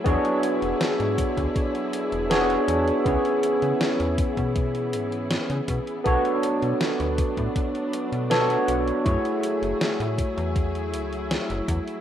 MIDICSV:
0, 0, Header, 1, 5, 480
1, 0, Start_track
1, 0, Tempo, 750000
1, 36, Time_signature, 4, 2, 24, 8
1, 7684, End_track
2, 0, Start_track
2, 0, Title_t, "Tine electric piano"
2, 0, Program_c, 0, 4
2, 0, Control_c, 0, 64, 127
2, 26, Note_on_c, 0, 59, 105
2, 31, Note_on_c, 0, 62, 99
2, 36, Note_on_c, 0, 66, 95
2, 40, Note_on_c, 0, 68, 97
2, 45, Control_c, 0, 64, 0
2, 45, Note_on_c, 0, 73, 112
2, 151, Control_c, 0, 64, 127
2, 1443, Note_off_c, 0, 59, 0
2, 1445, Note_off_c, 0, 62, 0
2, 1448, Note_off_c, 0, 66, 0
2, 1450, Note_off_c, 0, 68, 0
2, 1452, Note_off_c, 0, 73, 0
2, 1471, Note_on_c, 0, 59, 97
2, 1473, Note_on_c, 0, 62, 96
2, 1475, Note_on_c, 0, 66, 90
2, 1478, Note_on_c, 0, 68, 93
2, 1480, Note_on_c, 0, 73, 115
2, 1925, Note_off_c, 0, 59, 0
2, 1926, Note_off_c, 0, 62, 0
2, 1927, Note_off_c, 0, 66, 0
2, 1929, Note_off_c, 0, 68, 0
2, 1930, Note_off_c, 0, 73, 0
2, 1947, Note_on_c, 0, 59, 75
2, 1952, Note_on_c, 0, 61, 69
2, 1957, Note_on_c, 0, 64, 70
2, 1961, Note_on_c, 0, 68, 68
2, 1964, Control_c, 0, 64, 0
2, 1966, Note_on_c, 0, 73, 82
2, 2088, Control_c, 0, 64, 127
2, 3603, Note_off_c, 0, 59, 0
2, 3606, Note_off_c, 0, 61, 0
2, 3608, Note_off_c, 0, 64, 0
2, 3610, Note_off_c, 0, 68, 0
2, 3613, Note_off_c, 0, 73, 0
2, 3866, Note_on_c, 0, 59, 101
2, 3871, Note_on_c, 0, 62, 93
2, 3877, Note_on_c, 0, 66, 95
2, 3881, Note_on_c, 0, 69, 91
2, 3883, Control_c, 0, 64, 0
2, 3886, Note_on_c, 0, 73, 117
2, 4010, Control_c, 0, 64, 127
2, 5283, Note_off_c, 0, 59, 0
2, 5285, Note_off_c, 0, 62, 0
2, 5288, Note_off_c, 0, 66, 0
2, 5290, Note_off_c, 0, 69, 0
2, 5293, Note_off_c, 0, 73, 0
2, 5312, Note_on_c, 0, 59, 96
2, 5314, Note_on_c, 0, 62, 97
2, 5317, Note_on_c, 0, 66, 94
2, 5319, Note_on_c, 0, 69, 89
2, 5321, Note_on_c, 0, 73, 114
2, 5766, Note_off_c, 0, 59, 0
2, 5767, Note_off_c, 0, 62, 0
2, 5768, Note_off_c, 0, 66, 0
2, 5769, Note_off_c, 0, 69, 0
2, 5770, Note_off_c, 0, 73, 0
2, 5787, Note_on_c, 0, 57, 78
2, 5792, Note_on_c, 0, 64, 71
2, 5797, Note_on_c, 0, 66, 72
2, 5802, Note_on_c, 0, 68, 72
2, 5804, Control_c, 0, 64, 0
2, 5806, Note_on_c, 0, 73, 85
2, 5922, Control_c, 0, 64, 127
2, 7443, Note_off_c, 0, 57, 0
2, 7446, Note_off_c, 0, 64, 0
2, 7448, Note_off_c, 0, 66, 0
2, 7451, Note_off_c, 0, 68, 0
2, 7453, Note_off_c, 0, 73, 0
2, 7684, End_track
3, 0, Start_track
3, 0, Title_t, "String section"
3, 0, Program_c, 1, 48
3, 0, Note_on_c, 1, 54, 77
3, 0, Note_on_c, 1, 64, 87
3, 0, Note_on_c, 1, 68, 79
3, 38, Note_on_c, 1, 50, 81
3, 39, Note_on_c, 1, 73, 72
3, 1931, Note_off_c, 1, 54, 0
3, 1938, Note_off_c, 1, 50, 0
3, 1938, Note_off_c, 1, 73, 0
3, 1957, Note_on_c, 1, 52, 76
3, 1958, Note_on_c, 1, 59, 76
3, 3850, Note_off_c, 1, 64, 0
3, 3850, Note_off_c, 1, 68, 0
3, 3857, Note_off_c, 1, 52, 0
3, 3876, Note_on_c, 1, 54, 77
3, 3876, Note_on_c, 1, 57, 73
3, 3876, Note_on_c, 1, 62, 87
3, 5771, Note_off_c, 1, 59, 0
3, 5777, Note_off_c, 1, 62, 0
3, 5797, Note_on_c, 1, 68, 73
3, 5798, Note_on_c, 1, 64, 85
3, 7684, Note_off_c, 1, 54, 0
3, 7684, Note_off_c, 1, 57, 0
3, 7684, Note_off_c, 1, 64, 0
3, 7684, Note_off_c, 1, 68, 0
3, 7684, End_track
4, 0, Start_track
4, 0, Title_t, "FM bass"
4, 0, Program_c, 2, 39
4, 36, Note_on_c, 2, 40, 104
4, 112, Note_off_c, 2, 40, 0
4, 398, Note_on_c, 2, 28, 80
4, 471, Note_off_c, 2, 28, 0
4, 639, Note_on_c, 2, 44, 85
4, 786, Note_off_c, 2, 44, 0
4, 879, Note_on_c, 2, 38, 95
4, 951, Note_off_c, 2, 38, 0
4, 1359, Note_on_c, 2, 28, 83
4, 1645, Note_off_c, 2, 28, 0
4, 1716, Note_on_c, 2, 40, 92
4, 1866, Note_off_c, 2, 40, 0
4, 1956, Note_on_c, 2, 37, 99
4, 2032, Note_off_c, 2, 37, 0
4, 2319, Note_on_c, 2, 49, 76
4, 2392, Note_off_c, 2, 49, 0
4, 2559, Note_on_c, 2, 40, 88
4, 2706, Note_off_c, 2, 40, 0
4, 2799, Note_on_c, 2, 47, 96
4, 3156, Note_on_c, 2, 44, 99
4, 3166, Note_off_c, 2, 47, 0
4, 3444, Note_off_c, 2, 44, 0
4, 3519, Note_on_c, 2, 49, 89
4, 3592, Note_off_c, 2, 49, 0
4, 3637, Note_on_c, 2, 47, 109
4, 3712, Note_off_c, 2, 47, 0
4, 3877, Note_on_c, 2, 35, 102
4, 3952, Note_off_c, 2, 35, 0
4, 4240, Note_on_c, 2, 47, 79
4, 4312, Note_off_c, 2, 47, 0
4, 4480, Note_on_c, 2, 38, 86
4, 4626, Note_off_c, 2, 38, 0
4, 4719, Note_on_c, 2, 45, 93
4, 4792, Note_off_c, 2, 45, 0
4, 5199, Note_on_c, 2, 47, 84
4, 5485, Note_off_c, 2, 47, 0
4, 5557, Note_on_c, 2, 35, 88
4, 5707, Note_off_c, 2, 35, 0
4, 5797, Note_on_c, 2, 42, 105
4, 5872, Note_off_c, 2, 42, 0
4, 6159, Note_on_c, 2, 30, 78
4, 6232, Note_off_c, 2, 30, 0
4, 6399, Note_on_c, 2, 45, 87
4, 6546, Note_off_c, 2, 45, 0
4, 6640, Note_on_c, 2, 40, 96
4, 6997, Note_on_c, 2, 37, 97
4, 7007, Note_off_c, 2, 40, 0
4, 7285, Note_off_c, 2, 37, 0
4, 7360, Note_on_c, 2, 30, 94
4, 7432, Note_off_c, 2, 30, 0
4, 7477, Note_on_c, 2, 40, 114
4, 7552, Note_off_c, 2, 40, 0
4, 7684, End_track
5, 0, Start_track
5, 0, Title_t, "Drums"
5, 36, Note_on_c, 9, 36, 127
5, 37, Note_on_c, 9, 42, 68
5, 100, Note_off_c, 9, 36, 0
5, 101, Note_off_c, 9, 42, 0
5, 159, Note_on_c, 9, 42, 41
5, 223, Note_off_c, 9, 42, 0
5, 276, Note_on_c, 9, 42, 93
5, 340, Note_off_c, 9, 42, 0
5, 399, Note_on_c, 9, 42, 41
5, 463, Note_off_c, 9, 42, 0
5, 517, Note_on_c, 9, 38, 126
5, 517, Note_on_c, 9, 42, 68
5, 581, Note_off_c, 9, 38, 0
5, 581, Note_off_c, 9, 42, 0
5, 640, Note_on_c, 9, 42, 43
5, 704, Note_off_c, 9, 42, 0
5, 756, Note_on_c, 9, 36, 105
5, 757, Note_on_c, 9, 42, 101
5, 820, Note_off_c, 9, 36, 0
5, 821, Note_off_c, 9, 42, 0
5, 879, Note_on_c, 9, 36, 61
5, 880, Note_on_c, 9, 42, 42
5, 943, Note_off_c, 9, 36, 0
5, 944, Note_off_c, 9, 42, 0
5, 997, Note_on_c, 9, 36, 126
5, 998, Note_on_c, 9, 42, 69
5, 1061, Note_off_c, 9, 36, 0
5, 1062, Note_off_c, 9, 42, 0
5, 1119, Note_on_c, 9, 42, 41
5, 1183, Note_off_c, 9, 42, 0
5, 1237, Note_on_c, 9, 42, 91
5, 1301, Note_off_c, 9, 42, 0
5, 1359, Note_on_c, 9, 42, 42
5, 1423, Note_off_c, 9, 42, 0
5, 1478, Note_on_c, 9, 38, 127
5, 1478, Note_on_c, 9, 42, 70
5, 1542, Note_off_c, 9, 38, 0
5, 1542, Note_off_c, 9, 42, 0
5, 1600, Note_on_c, 9, 42, 41
5, 1664, Note_off_c, 9, 42, 0
5, 1718, Note_on_c, 9, 42, 101
5, 1782, Note_off_c, 9, 42, 0
5, 1840, Note_on_c, 9, 42, 40
5, 1904, Note_off_c, 9, 42, 0
5, 1956, Note_on_c, 9, 36, 121
5, 1958, Note_on_c, 9, 42, 64
5, 2020, Note_off_c, 9, 36, 0
5, 2022, Note_off_c, 9, 42, 0
5, 2080, Note_on_c, 9, 42, 39
5, 2144, Note_off_c, 9, 42, 0
5, 2196, Note_on_c, 9, 42, 93
5, 2260, Note_off_c, 9, 42, 0
5, 2318, Note_on_c, 9, 42, 40
5, 2382, Note_off_c, 9, 42, 0
5, 2437, Note_on_c, 9, 38, 127
5, 2437, Note_on_c, 9, 42, 69
5, 2501, Note_off_c, 9, 38, 0
5, 2501, Note_off_c, 9, 42, 0
5, 2559, Note_on_c, 9, 42, 42
5, 2623, Note_off_c, 9, 42, 0
5, 2676, Note_on_c, 9, 36, 113
5, 2676, Note_on_c, 9, 42, 97
5, 2740, Note_off_c, 9, 36, 0
5, 2740, Note_off_c, 9, 42, 0
5, 2799, Note_on_c, 9, 36, 63
5, 2799, Note_on_c, 9, 42, 39
5, 2863, Note_off_c, 9, 36, 0
5, 2863, Note_off_c, 9, 42, 0
5, 2916, Note_on_c, 9, 36, 127
5, 2917, Note_on_c, 9, 42, 72
5, 2980, Note_off_c, 9, 36, 0
5, 2981, Note_off_c, 9, 42, 0
5, 3039, Note_on_c, 9, 42, 38
5, 3103, Note_off_c, 9, 42, 0
5, 3157, Note_on_c, 9, 42, 89
5, 3221, Note_off_c, 9, 42, 0
5, 3278, Note_on_c, 9, 42, 40
5, 3342, Note_off_c, 9, 42, 0
5, 3396, Note_on_c, 9, 38, 124
5, 3396, Note_on_c, 9, 42, 68
5, 3460, Note_off_c, 9, 38, 0
5, 3460, Note_off_c, 9, 42, 0
5, 3519, Note_on_c, 9, 42, 42
5, 3583, Note_off_c, 9, 42, 0
5, 3636, Note_on_c, 9, 42, 89
5, 3637, Note_on_c, 9, 36, 63
5, 3700, Note_off_c, 9, 42, 0
5, 3701, Note_off_c, 9, 36, 0
5, 3759, Note_on_c, 9, 42, 39
5, 3823, Note_off_c, 9, 42, 0
5, 3876, Note_on_c, 9, 42, 63
5, 3877, Note_on_c, 9, 36, 122
5, 3940, Note_off_c, 9, 42, 0
5, 3941, Note_off_c, 9, 36, 0
5, 4000, Note_on_c, 9, 42, 39
5, 4064, Note_off_c, 9, 42, 0
5, 4117, Note_on_c, 9, 42, 86
5, 4181, Note_off_c, 9, 42, 0
5, 4240, Note_on_c, 9, 42, 39
5, 4304, Note_off_c, 9, 42, 0
5, 4357, Note_on_c, 9, 38, 122
5, 4357, Note_on_c, 9, 42, 66
5, 4421, Note_off_c, 9, 38, 0
5, 4421, Note_off_c, 9, 42, 0
5, 4480, Note_on_c, 9, 42, 39
5, 4544, Note_off_c, 9, 42, 0
5, 4596, Note_on_c, 9, 42, 97
5, 4597, Note_on_c, 9, 36, 108
5, 4660, Note_off_c, 9, 42, 0
5, 4661, Note_off_c, 9, 36, 0
5, 4719, Note_on_c, 9, 36, 63
5, 4720, Note_on_c, 9, 42, 38
5, 4783, Note_off_c, 9, 36, 0
5, 4784, Note_off_c, 9, 42, 0
5, 4837, Note_on_c, 9, 36, 121
5, 4837, Note_on_c, 9, 42, 72
5, 4901, Note_off_c, 9, 36, 0
5, 4901, Note_off_c, 9, 42, 0
5, 4960, Note_on_c, 9, 42, 37
5, 5024, Note_off_c, 9, 42, 0
5, 5078, Note_on_c, 9, 42, 87
5, 5142, Note_off_c, 9, 42, 0
5, 5200, Note_on_c, 9, 42, 41
5, 5264, Note_off_c, 9, 42, 0
5, 5318, Note_on_c, 9, 38, 124
5, 5318, Note_on_c, 9, 42, 66
5, 5382, Note_off_c, 9, 38, 0
5, 5382, Note_off_c, 9, 42, 0
5, 5441, Note_on_c, 9, 42, 42
5, 5505, Note_off_c, 9, 42, 0
5, 5557, Note_on_c, 9, 42, 92
5, 5621, Note_off_c, 9, 42, 0
5, 5680, Note_on_c, 9, 42, 37
5, 5744, Note_off_c, 9, 42, 0
5, 5797, Note_on_c, 9, 36, 120
5, 5799, Note_on_c, 9, 42, 66
5, 5861, Note_off_c, 9, 36, 0
5, 5863, Note_off_c, 9, 42, 0
5, 5921, Note_on_c, 9, 42, 39
5, 5985, Note_off_c, 9, 42, 0
5, 6038, Note_on_c, 9, 42, 91
5, 6102, Note_off_c, 9, 42, 0
5, 6161, Note_on_c, 9, 42, 38
5, 6225, Note_off_c, 9, 42, 0
5, 6280, Note_on_c, 9, 38, 125
5, 6280, Note_on_c, 9, 42, 68
5, 6344, Note_off_c, 9, 38, 0
5, 6344, Note_off_c, 9, 42, 0
5, 6402, Note_on_c, 9, 42, 39
5, 6466, Note_off_c, 9, 42, 0
5, 6516, Note_on_c, 9, 36, 101
5, 6518, Note_on_c, 9, 42, 96
5, 6580, Note_off_c, 9, 36, 0
5, 6582, Note_off_c, 9, 42, 0
5, 6641, Note_on_c, 9, 42, 40
5, 6705, Note_off_c, 9, 42, 0
5, 6757, Note_on_c, 9, 36, 119
5, 6758, Note_on_c, 9, 42, 69
5, 6821, Note_off_c, 9, 36, 0
5, 6822, Note_off_c, 9, 42, 0
5, 6881, Note_on_c, 9, 42, 38
5, 6945, Note_off_c, 9, 42, 0
5, 6999, Note_on_c, 9, 42, 89
5, 7063, Note_off_c, 9, 42, 0
5, 7121, Note_on_c, 9, 42, 39
5, 7185, Note_off_c, 9, 42, 0
5, 7238, Note_on_c, 9, 38, 120
5, 7238, Note_on_c, 9, 42, 66
5, 7302, Note_off_c, 9, 38, 0
5, 7302, Note_off_c, 9, 42, 0
5, 7360, Note_on_c, 9, 42, 38
5, 7424, Note_off_c, 9, 42, 0
5, 7477, Note_on_c, 9, 36, 62
5, 7478, Note_on_c, 9, 42, 91
5, 7541, Note_off_c, 9, 36, 0
5, 7542, Note_off_c, 9, 42, 0
5, 7600, Note_on_c, 9, 42, 37
5, 7664, Note_off_c, 9, 42, 0
5, 7684, End_track
0, 0, End_of_file